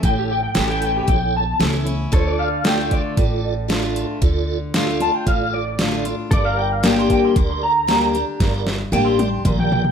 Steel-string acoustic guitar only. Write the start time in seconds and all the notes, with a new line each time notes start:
0.03 A2
0.55 E3 A3 C#4 E4
1.60 E3 A3 C#4 E4
1.85 C#4 E4
2.12 D3
2.64 D3 A3 D4 F4
3.17 A2
3.68 D3 A3 D4 F4
4.22 D3
4.74 D3 A3 D4 F4
5.00 D4 F4
5.27 A2
5.79 D3 A3 D4 F4
6.05 D4 F4
6.32 G2
6.83 G3 A#3 D4 G4
7.36 D3
7.87 G3 A#3 D4 G4
8.13 D4 G4
8.40 G2
8.92 G3 A#3 D4 G4
9.19 D4 G4
9.45 A#2